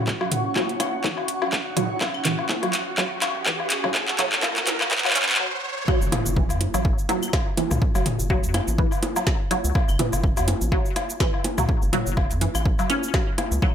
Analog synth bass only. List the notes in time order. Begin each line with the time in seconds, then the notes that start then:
6.02 F#1
6.26 F#1
6.50 F#2
6.74 A1
7.71 C#2
7.95 F#1
8.19 F#1
8.44 F#2
8.68 A1
9.65 C#2
9.89 F#1
10.13 F#1
10.37 F#2
10.61 A1
11.58 C#2
11.82 F#1
12.06 F#1
12.31 F#2
12.55 A1
13.52 C#2